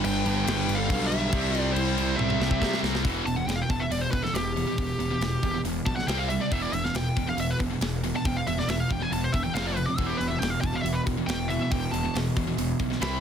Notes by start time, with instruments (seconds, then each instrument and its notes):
Already playing: distorted electric guitar G2 D3 G3
0.04 picked electric bass G1, lead electric guitar B4 G5, crash
0.25 picked electric bass G1, distorted electric guitar G2 D3 G3, crash
0.44 picked electric bass G1, distorted electric guitar G2 D3, lead electric guitar B4 G5, crash
0.48 distorted electric guitar G3, snare
0.68 picked electric bass G1, crash
0.75 lead electric guitar A4 F5
0.89 picked electric bass B1, distorted electric guitar G2 D3 G3, kick, crash
1.07 lead electric guitar G4 E5
1.12 crash
1.31 picked electric bass C2, distorted electric guitar C3 G3 C4, kick, crash
1.54 lead electric guitar F4, crash
1.59 lead electric guitar D5
1.72 picked electric bass C2, lead electric guitar E4 C5, crash
1.96 distorted electric guitar C3 G3 C4, crash
2.16 picked electric bass C2, distorted electric guitar C3 G3 C4, lead electric guitar G4 E5, high tom
2.30 high tom
2.40 picked electric bass C2, snare
2.51 kick
2.61 distorted electric guitar C3 G3 C4, picked electric bass C3, kick, snare
2.73 snare
2.83 picked electric bass C2, snare
2.95 snare
3.04 picked electric bass E1, distorted electric guitar E2 B2 E3, kick, open hi-hat
3.25 picked electric bass E1, distorted electric guitar E2 B2, lead electric guitar A5, open hi-hat
3.36 distorted electric guitar E2 B2, lead electric guitar F#5
3.47 picked electric bass E1, distorted electric guitar E2 B2, lead electric guitar G5, snare, open hi-hat
3.56 lead electric guitar F5
3.62 lead electric guitar G5
3.69 picked electric bass E1, distorted electric guitar E2 B2, lead electric guitar A5, kick, open hi-hat
3.80 distorted electric guitar E2 B2, lead electric guitar E5
3.90 picked electric bass E1, distorted electric guitar E2 B2, lead electric guitar D5, open hi-hat
4.01 lead electric guitar C5
4.11 picked electric bass E1, distorted electric guitar E2 B2, lead electric guitar B4, kick
4.23 distorted electric guitar E2 B2, lead electric guitar A4, snare
4.33 picked electric bass E1, distorted electric guitar E2 B2, lead electric guitar G4, snare, open hi-hat
4.56 distorted electric guitar E2 B2, open hi-hat
4.67 distorted electric guitar E2 B2
4.78 picked electric bass E1, distorted electric guitar E2 B2, kick, open hi-hat
4.99 picked electric bass E1, distorted electric guitar E2 B2, open hi-hat
5.11 distorted electric guitar E2 B2
5.21 picked electric bass E1, distorted electric guitar E2 B2, snare, open hi-hat
5.43 picked electric bass E1, distorted electric guitar E2 B2, kick, open hi-hat
5.54 distorted electric guitar E2 B2
5.64 picked electric bass E1, distorted electric guitar E2 B2, open hi-hat
5.86 picked electric bass B1, distorted electric guitar E2 B2, lead electric guitar A5, kick, open hi-hat
5.96 distorted electric guitar E2 B2, lead electric guitar F#5, snare
6.08 picked electric bass C2, distorted electric guitar C3 G3 C4, lead electric guitar G5, snare, open hi-hat
6.18 lead electric guitar F5
6.29 distorted electric guitar C3 G3, lead electric guitar E5, open hi-hat
6.41 distorted electric guitar C3 G3, lead electric guitar D5
6.51 picked electric bass E1, distorted electric guitar E2 B2 E3, lead electric guitar E5, kick, open hi-hat
6.62 lead electric guitar D5
6.73 picked electric bass E1, distorted electric guitar E2 B2, lead electric guitar E5, open hi-hat
6.84 distorted electric guitar E2 B2, lead electric guitar F5, snare
6.95 picked electric bass E1, distorted electric guitar E2 B2, lead electric guitar G5, snare, open hi-hat
7.17 picked electric bass E1, distorted electric guitar E2 B2, kick, open hi-hat
7.27 distorted electric guitar E2 B2, lead electric guitar F5
7.38 picked electric bass E1, distorted electric guitar E2 B2, lead electric guitar E5, open hi-hat
7.51 lead electric guitar B4
7.59 picked electric bass E1, distorted electric guitar E2 B2, kick, open hi-hat
7.71 distorted electric guitar E2 B2
7.81 picked electric bass E1, distorted electric guitar E2 B2, snare, open hi-hat
8.03 distorted electric guitar E2 B2, open hi-hat
8.14 distorted electric guitar E2 B2, lead electric guitar A5
8.25 picked electric bass E1, distorted electric guitar E2 B2, lead electric guitar G5, kick, open hi-hat
8.37 lead electric guitar F5
8.47 picked electric bass E1, distorted electric guitar E2 B2, lead electric guitar E5, open hi-hat
8.58 distorted electric guitar E2 B2, lead electric guitar D5, snare
8.69 picked electric bass E1, distorted electric guitar E2 B2, lead electric guitar E5, snare, open hi-hat
8.80 lead electric guitar F5
8.90 picked electric bass E1, distorted electric guitar E2 B2, lead electric guitar G5, kick
9.02 distorted electric guitar E2 B2, lead electric guitar G#5
9.12 picked electric bass E1, distorted electric guitar E2 B2, lead electric guitar A5, open hi-hat
9.24 lead electric guitar C5
9.33 picked electric bass E1, distorted electric guitar E2 B2, lead electric guitar E5, kick, open hi-hat
9.44 distorted electric guitar E2 B2, lead electric guitar G5
9.55 picked electric bass F1, distorted electric guitar F2 C3 F3, lead electric guitar F5, snare, open hi-hat
9.67 lead electric guitar D5
9.76 distorted electric guitar F2 C3, lead electric guitar B4, open hi-hat
9.86 distorted electric guitar F2 C3, lead electric guitar D5
9.97 picked electric bass E1, distorted electric guitar E2 B2 E3, lead electric guitar E5, kick, open hi-hat
10.06 lead electric guitar G4
10.17 picked electric bass E1, distorted electric guitar E2 B2, lead electric guitar B4, open hi-hat
10.27 distorted electric guitar E2 B2, lead electric guitar E5
10.39 picked electric bass E1, distorted electric guitar E2 B2, lead electric guitar G5, open hi-hat
10.43 snare
10.51 lead electric guitar F5
10.61 picked electric bass E1, distorted electric guitar E2 B2, lead electric guitar G5, kick, open hi-hat
10.67 lead electric guitar A5
10.73 distorted electric guitar E2 B2, lead electric guitar F5
10.82 picked electric bass E1, distorted electric guitar E2 B2, lead electric guitar E5, open hi-hat
10.93 lead electric guitar B4
11.06 picked electric bass E1, distorted electric guitar E2 B2, kick, open hi-hat
11.17 distorted electric guitar E2 B2
11.27 picked electric bass E1, distorted electric guitar E2 B2, lead electric guitar G5, snare, open hi-hat
11.48 distorted electric guitar E2 B2, overdriven electric guitar E3, lead electric guitar E5, open hi-hat
11.59 distorted electric guitar E2 B2
11.71 picked electric bass E1, distorted electric guitar E2 B2, overdriven electric guitar E3, lead electric guitar G5, kick, open hi-hat
11.91 picked electric bass E1, distorted electric guitar E2 B2, lead electric guitar A5, open hi-hat
12.03 distorted electric guitar E2 B2
12.14 picked electric bass E1, distorted electric guitar E2 B2, snare, open hi-hat
12.36 picked electric bass E1, distorted electric guitar E2 B2, kick, open hi-hat
12.47 distorted electric guitar E2 B2
12.57 picked electric bass E1, distorted electric guitar E2 B2, open hi-hat
12.79 picked electric bass B1, distorted electric guitar E2 B2, kick, open hi-hat
12.90 distorted electric guitar E2 B2, snare
13.00 picked electric bass C2, distorted electric guitar C3 G3 C4, lead electric guitar B5, snare, open hi-hat